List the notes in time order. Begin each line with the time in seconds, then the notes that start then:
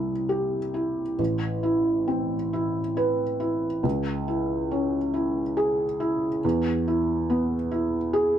Already playing: C2 C4 E4
0.29 G4
0.74 E4
1.19 A1
1.63 E4
2.08 C4
2.53 E4
2.97 B4
3.40 E4
3.83 C#2
4.28 E4
4.71 C#4
5.14 E4
5.57 G#4
6.00 E4
6.44 E2
6.88 E4
7.30 B3
7.71 E4
8.13 G#4